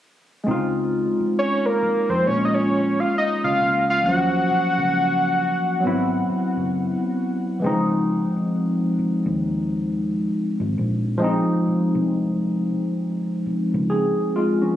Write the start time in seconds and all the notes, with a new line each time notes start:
0.44 C#2 G#3 C4
0.48 D#4 F4
1.20 muted fingered electric bass stroke
1.39 C#5
1.66 A#4
1.83 muted fingered electric bass stroke
2.10 F2 C5
2.23 G#3 A#3
2.27 A#1 C#4 F4 C#5
2.45 D#5
2.54 C#5
3.00 F5
3.18 D#5
3.44 C#2 F5
3.61 C#2
3.90 F5
4.01 D#2 F3 A#3
4.06 F3 F#3 C#4 F#5
4.51 muted fingered electric bass stroke
4.78 C#2
5.80 F#3 B3
5.85 G#1 C4 E4
6.29 muted fingered electric bass stroke
6.57 F#1
7.60 E3 G#3
7.64 C#2 F3 C4 D#4
8.36 muted fingered electric bass stroke
8.99 muted fingered electric bass stroke
9.26 D#2
10.60 G#1
10.78 A#1
11.18 F3 G#3
11.22 C4 D#4
11.68 muted fingered electric bass stroke
11.95 C2
13.46 muted fingered electric bass stroke
13.74 C#2
13.90 C4 G#4
14.36 G#3 F4
14.62 F3 C#4